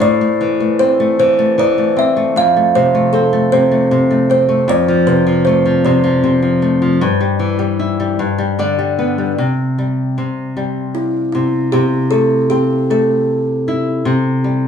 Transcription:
0.00 nylon-string guitar A2, kalimba D5
0.21 nylon-string guitar A3
0.41 nylon-string guitar E3
0.60 nylon-string guitar A3
0.79 nylon-string guitar C4, kalimba C5
1.00 nylon-string guitar A3
1.19 nylon-string guitar E3, kalimba C5
1.39 nylon-string guitar A3
1.58 nylon-string guitar E3, kalimba D5
1.78 nylon-string guitar A3
1.97 nylon-string guitar C4, kalimba E5
2.17 nylon-string guitar A3
2.36 nylon-string guitar F2, kalimba F5
2.56 nylon-string guitar A3
2.75 nylon-string guitar C3, kalimba C5
2.95 nylon-string guitar A3
3.13 nylon-string guitar C4, kalimba A4
3.33 nylon-string guitar A3
3.52 nylon-string guitar C3, kalimba C5
3.71 nylon-string guitar A3
3.91 nylon-string guitar C3
4.11 nylon-string guitar A3
4.30 nylon-string guitar C4, kalimba C5
4.49 nylon-string guitar A3
4.68 nylon-string guitar F2, kalimba D5
4.88 nylon-string guitar F3
5.07 nylon-string guitar C3, kalimba B4
5.27 nylon-string guitar F3
5.45 nylon-string guitar A3, kalimba C5
5.65 nylon-string guitar F3
5.85 nylon-string guitar C3, kalimba D5
6.04 nylon-string guitar F3
6.24 nylon-string guitar C3
6.42 nylon-string guitar F3
6.62 nylon-string guitar A3
6.82 nylon-string guitar F3
7.01 nylon-string guitar G2
7.21 nylon-string guitar G3
7.39 nylon-string guitar E3
7.59 nylon-string guitar G3
7.79 nylon-string guitar E4
8.00 nylon-string guitar G3
8.19 nylon-string guitar G2
8.38 nylon-string guitar G3
8.59 nylon-string guitar D3 D5
8.79 nylon-string guitar G3
8.99 nylon-string guitar B3 B4
9.18 nylon-string guitar G3
9.38 nylon-string guitar C3
9.78 nylon-string guitar G3
10.18 nylon-string guitar C3
10.57 nylon-string guitar G3
10.95 kalimba E4
11.32 nylon-string guitar C3, kalimba E4
11.72 nylon-string guitar C3, kalimba G4
12.11 nylon-string guitar A3, kalimba A4
12.50 nylon-string guitar C4, kalimba G4
12.90 nylon-string guitar A3, kalimba A4
13.68 nylon-string guitar E4
14.05 nylon-string guitar C3
14.44 nylon-string guitar G3

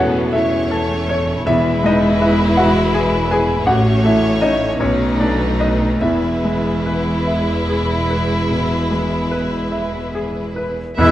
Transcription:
Already playing: double bass section E1, cello section E2, grand piano E3 A3 E4 F#4 G#4 A4 C#5 E5 F#5 G#5, viola section B3, violin section C#4 A4
0.33 viola section A3, violin section C#4 C#5, grand piano E4 E5
0.71 grand piano A4
1.09 grand piano C#5
1.46 double bass section E1, grand piano E2 E4 E5, timpani E2, cello section E2, viola section G#3, violin section E4 B4
1.83 grand piano G#3 D#4 D#5
2.21 grand piano E4 B4 E5
2.57 grand piano F#4 E5 F#5
2.94 grand piano G#4 G#5
3.31 grand piano G#4 B4 G#5
3.66 grand piano A1 F#4 F#5, double bass section A1, cello section A2, viola section A3, violin section C#4 C#5
4.03 grand piano A3 E4 E5
4.42 grand piano C#4 D#4 C#5 D#5
4.80 double bass section B1, grand piano B1 C#4 C#5, cello section B2, viola section A3, violin section D#4 B4
5.20 grand piano A3 D4 D5
5.60 grand piano D#4 B4 D#5
6.01 double bass section E1, cello section E2, grand piano E2 E4 E5, viola section G#3, violin section E4 B4
6.44 grand piano G#3
6.86 grand piano B4
7.27 grand piano E5
7.69 grand piano G#4
8.10 grand piano B4
8.51 grand piano B2
8.91 grand piano G#3
9.31 grand piano B4
9.72 grand piano E5
10.15 grand piano G#4
10.56 grand piano B4
10.98 double bass section E1, timpani E2, grand piano E2, cello section E2, viola section G#3, bassoon G#3, violin section E4 E5, clarinet E4, oboe B4, flute E6

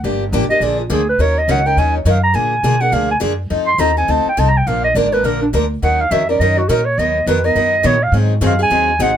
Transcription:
0.04 upright bass G1, steel-string acoustic guitar D3 F3 A#3 D4 G4
0.32 upright bass A1, steel-string acoustic guitar D3 F3 A#3 D4 G4
0.49 steel-string acoustic guitar A#3 D4 G4, clarinet D#5, muted upright bass stroke
0.60 upright bass A#1, steel-string acoustic guitar D3 F3 A#3 D4 G#4, clarinet D5
0.80 clarinet F4
0.90 upright bass D2, steel-string acoustic guitar D3 F3 A#3 D4 G#4, clarinet G#4
1.09 clarinet B4
1.19 upright bass D#2, steel-string acoustic guitar D#3 F#3 C#4 D#4 A#4, clarinet C#5
1.38 clarinet D#5
1.48 upright bass C#2, steel-string acoustic guitar D#3 F#3 C#4 D#4 A#4, clarinet F#5
1.66 steel-string acoustic guitar C#4 D#4 A#4, clarinet G5
1.77 upright bass D#2, steel-string acoustic guitar D#3 F#3 C#4 D#4 A#4, clarinet G#5
1.97 clarinet C#5
2.05 upright bass F#2, steel-string acoustic guitar D#3 F#3 C#4 D#4 A#4
2.09 clarinet F5
2.23 clarinet A#5
2.34 upright bass A#2, steel-string acoustic guitar D3 F3 A#3 D4 G#4, clarinet G#5
2.63 upright bass B2, steel-string acoustic guitar D3 F3 A#3 D4 G#4
2.81 steel-string acoustic guitar A#3 D4 G#4, clarinet F#5
2.92 upright bass D2, steel-string acoustic guitar D3 F3 A#3 D4 G#4, clarinet F5
3.11 clarinet G#5
3.20 upright bass F#2, steel-string acoustic guitar D3 F3 A#3 D4 G#4
3.50 upright bass F2, steel-string acoustic guitar F3 C4 D#4 A4
3.67 clarinet C6
3.78 upright bass D#2, steel-string acoustic guitar F3 C4 D#4 A4, clarinet A#5
3.97 steel-string acoustic guitar C4 D#4 A4, clarinet G#5
4.08 upright bass D2, steel-string acoustic guitar F3 C4 D#4 A4, clarinet A5
4.25 clarinet G5, muted upright bass stroke
4.37 upright bass C2, steel-string acoustic guitar F3 C4 D#4 A4, clarinet A5
4.49 clarinet A#5
4.58 clarinet G5
4.67 upright bass A#1, steel-string acoustic guitar D3 F3 A#3 D4 A#4, clarinet F5
4.84 clarinet D#5
4.95 upright bass G#1, steel-string acoustic guitar D3 F3 A#3 D4 A#4, clarinet D5
5.12 steel-string acoustic guitar A#3 D4 A#4, clarinet B4
5.24 upright bass A#1, steel-string acoustic guitar D3 F3 A#3 D4 A#4, clarinet A#4
5.42 clarinet D4
5.53 upright bass D2, steel-string acoustic guitar D3 F3 A#3 D4 A#4
5.82 upright bass D#2, steel-string acoustic guitar D#3 F#3 C#4 D#4 A#4, clarinet F#5
6.01 clarinet F5
6.11 upright bass F2, steel-string acoustic guitar D#3 F#3 C#4 D#4 A#4, clarinet E5
6.29 steel-string acoustic guitar C#4 D#4 A#4, clarinet D5
6.40 upright bass F#2, steel-string acoustic guitar D#3 F#3 C#4 D#4 A#4, clarinet D#5
6.58 clarinet F#4
6.69 upright bass A#2, steel-string acoustic guitar D#3 F#3 C#4 D#4 A#4, clarinet A#4
6.86 clarinet C#5
6.98 upright bass D#2, steel-string acoustic guitar D#3 F#3 B3 D#4 A#4, clarinet D#5
7.26 upright bass F2, steel-string acoustic guitar D#3 F#3 B3 D#4 A#4, clarinet B4
7.44 steel-string acoustic guitar B3 D#4 A#4, clarinet D#5
7.55 upright bass F#2, steel-string acoustic guitar D#3 F#3 B3 D#4 A#4
7.83 upright bass A#2, steel-string acoustic guitar D#3 F#3 B3 D#4 A#4, clarinet C#5
8.03 clarinet F5
8.12 upright bass G#2, steel-string acoustic guitar D#3 F#3 C4 D#4 G#4
8.41 upright bass F#2, steel-string acoustic guitar D#3 F#3 C4 D#4 G#4
8.45 clarinet F5
8.59 steel-string acoustic guitar C4 D#4 G#4, clarinet G#5
8.70 upright bass D#2, steel-string acoustic guitar D#3 F#3 C4 D#4 G#4
8.99 upright bass G#1, steel-string acoustic guitar D#3 F#3 C4 D#4 G#4, clarinet F#5

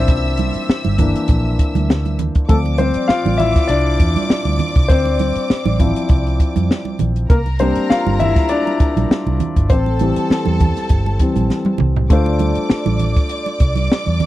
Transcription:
Already playing: grand piano E3 A#3 C4 D4 E4 F4 C5 D5 E5 F5, string section E5 E6
0.08 fingered electric bass C2, kick, closed hi-hat
0.37 closed hi-hat, high conga
0.54 muted fingered electric bass stroke, closed hi-hat
0.69 muted fingered electric bass stroke, snare
0.84 fingered electric bass G1, closed hi-hat, high conga
0.98 grand piano E3 A#3 D4, kick, closed hi-hat, low conga
1.16 closed hi-hat
1.28 fingered electric bass A#1, kick, closed hi-hat, muted conga
1.59 kick, closed hi-hat
1.75 fingered electric bass D2, closed hi-hat, high conga
1.90 snare, muted conga
2.05 closed hi-hat, high conga
2.19 closed hi-hat, low conga
2.35 kick, closed hi-hat
2.48 fingered electric bass D2, grand piano F3 A3 C4 A4, string section D5 D6, kick, closed hi-hat, muted conga
2.65 closed hi-hat, muted conga
2.78 grand piano C4 C5, closed hi-hat, high conga
2.94 muted fingered electric bass stroke, closed hi-hat
3.08 grand piano F4 F5, muted fingered electric bass stroke, snare, muted conga
3.25 fingered electric bass A1, muted conga, high conga
3.38 grand piano E4 E5, closed hi-hat, low conga
3.56 kick, snare, closed hi-hat
3.68 fingered electric bass C2, grand piano D4 D5, closed hi-hat, muted conga
4.00 fingered electric bass E2, kick, closed hi-hat
4.16 closed hi-hat, high conga
4.30 muted fingered electric bass stroke, snare
4.45 fingered electric bass D2, muted conga, high conga
4.59 closed hi-hat, low conga
4.75 fingered electric bass C2, kick, closed hi-hat
4.88 fingered electric bass D2, grand piano C4 C5, kick, closed hi-hat, muted conga
5.05 muted conga
5.19 closed hi-hat, high conga
5.35 muted fingered electric bass stroke, closed hi-hat
5.50 muted fingered electric bass stroke, snare
5.65 fingered electric bass A1, closed hi-hat, muted conga, high conga
5.79 grand piano F3 C4 E4, kick, closed hi-hat, low conga
5.96 closed hi-hat
6.09 fingered electric bass C2, kick, closed hi-hat
6.27 closed hi-hat
6.40 kick, closed hi-hat
6.56 fingered electric bass F2, closed hi-hat, high conga
6.71 snare
6.85 muted conga, high conga
6.99 fingered electric bass A#1, closed hi-hat, low conga
7.16 closed hi-hat
7.30 fingered electric bass C2, grand piano A#3 A#4, string section A#4 A#5, kick, closed hi-hat
7.46 closed hi-hat, muted conga
7.59 grand piano G3 A#3 C4 D4 C5, closed hi-hat, high conga
7.75 muted fingered electric bass stroke, closed hi-hat
7.90 grand piano F4 F5, muted fingered electric bass stroke, snare, muted conga
8.07 fingered electric bass G1, high conga
8.20 grand piano E4 E5, closed hi-hat, low conga
8.36 kick, snare, closed hi-hat
8.49 grand piano D4 D5, closed hi-hat
8.67 closed hi-hat, muted conga
8.80 muted fingered electric bass stroke, kick, closed hi-hat
8.96 fingered electric bass A#1, closed hi-hat, high conga
9.11 snare
9.27 fingered electric bass C2, muted conga, high conga
9.40 closed hi-hat, low conga
9.56 fingered electric bass G1, kick, closed hi-hat
9.70 fingered electric bass A1, grand piano C4 C5, string section A4 A5, kick, closed hi-hat
9.86 muted conga
9.99 grand piano E3 G3 C4, closed hi-hat, high conga
10.16 muted fingered electric bass stroke, closed hi-hat
10.30 muted fingered electric bass stroke, snare, muted conga
10.46 fingered electric bass E2, high conga
10.60 kick, closed hi-hat, low conga
10.77 snare, closed hi-hat
10.89 fingered electric bass G1, kick, closed hi-hat, muted conga
11.06 muted conga
11.19 grand piano E3 G3 C4, kick, closed hi-hat
11.36 fingered electric bass A#1, closed hi-hat, high conga
11.50 snare, muted conga
11.65 high tom, high conga
11.78 fingered electric bass C2, mid tom, low conga
11.96 floor tom
12.10 fingered electric bass D2, grand piano A3 D4 F4 C5, string section D5 D6, kick, closed hi-hat
12.26 muted conga
12.39 closed hi-hat, high conga
12.55 muted fingered electric bass stroke, closed hi-hat
12.70 muted fingered electric bass stroke, snare, muted conga
12.86 fingered electric bass A1, muted conga, high conga
12.99 closed hi-hat, low conga
13.16 kick, closed hi-hat
13.29 closed hi-hat
13.46 closed hi-hat, muted conga
13.60 fingered electric bass C2, kick, closed hi-hat
13.75 closed hi-hat, high conga
13.90 muted fingered electric bass stroke, snare
14.06 fingered electric bass E2, closed hi-hat, high conga
14.20 closed hi-hat, low conga

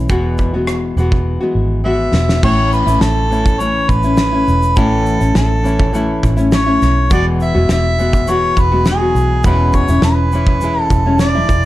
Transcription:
Already playing: nylon-string guitar C#4 E4
0.09 fingered electric bass E1, nylon-string guitar E2 B2 E3 G#3 B3 F#4, kick, shaker
0.38 kick, shaker
0.54 nylon-string guitar E3 G#3 B3 F#4
0.67 cross-stick, shaker
0.96 fingered electric bass E1, nylon-string guitar E3 G#3 B3 F#4, shaker
1.12 kick
1.41 nylon-string guitar E3 G#3 B3 F#4
1.55 fingered electric bass G#1
1.84 nylon-string guitar E3 G#3 B3 F#4, harmonica E5
2.13 fingered electric bass E1, snare
2.29 snare
2.43 fingered electric bass A1, nylon-string guitar A2 E3 A3 C#4 E4, harmonica C#5, kick, crash
2.72 harmonica B4, shaker
2.87 fingered electric bass A1, nylon-string guitar A3 C#4 E4, shaker
3.01 fingered electric bass A1, harmonica A4, snare, shaker
3.30 nylon-string guitar E3 A3 C#4 E4, shaker
3.46 kick, shaker
3.59 nylon-string guitar E3 A3 C#4 E4, harmonica C#5, shaker
3.89 fingered electric bass A1, harmonica B4, kick, shaker
4.03 nylon-string guitar A3 C#4 E4, shaker
4.17 snare, shaker
4.32 nylon-string guitar A3 C#4 E4
4.48 fingered electric bass E1, shaker
4.62 shaker
4.76 fingered electric bass A1, nylon-string guitar A2 E3 A3 C#4 E4, harmonica A4, kick, shaker
5.06 shaker
5.20 fingered electric bass A1, nylon-string guitar A3 C#4 E4, shaker
5.35 fingered electric bass A1, harmonica A4, snare, shaker
5.63 nylon-string guitar E3 A3 C#4 E4, shaker
5.80 kick
5.93 nylon-string guitar E3 A3 C#4 E4, shaker
6.23 fingered electric bass A1, kick, shaker
6.37 nylon-string guitar A3 C#4 E4, shaker
6.52 harmonica C#5, snare, shaker
6.66 nylon-string guitar A3 C#4 E4
6.81 fingered electric bass B1, snare, shaker
7.10 fingered electric bass E1, nylon-string guitar E2 B2 E3 G#3 B3 F#4, harmonica D5, kick, shaker
7.40 harmonica E5, shaker
7.55 fingered electric bass E1, nylon-string guitar E3 G#3 B3 F#4
7.69 fingered electric bass E1, harmonica E5, snare, shaker
7.98 nylon-string guitar E3 G#3 B3 F#4, shaker
8.13 kick, shaker
8.27 nylon-string guitar E3 G#3 B3 F#4, harmonica C#5, shaker
8.57 fingered electric bass E1, harmonica B4, kick, shaker
8.72 nylon-string guitar E3 G#3 B3 F#4
8.85 harmonica G#4, snare, shaker
9.01 nylon-string guitar E3 G#3 B3 F#4
9.15 fingered electric bass B1, shaker
9.44 fingered electric bass E1, nylon-string guitar E2 B2 E3 G#3 C#4 E4, harmonica B4, kick, shaker
9.73 harmonica C#5, kick, shaker
9.88 fingered electric bass E1, nylon-string guitar E3 G#3 C#4 E4, shaker
10.02 fingered electric bass E1, harmonica B4, snare, shaker
10.32 nylon-string guitar E3 G#3 C#4 E4, shaker
10.47 kick
10.61 nylon-string guitar E3 G#3 C#4 E4, shaker
10.81 harmonica A4
10.90 fingered electric bass E1, kick, shaker
11.06 nylon-string guitar E3 G#3 C#4 E4
11.19 harmonica D5, snare, shaker
11.35 nylon-string guitar E3 G#3 E4
11.49 fingered electric bass E1, kick, shaker

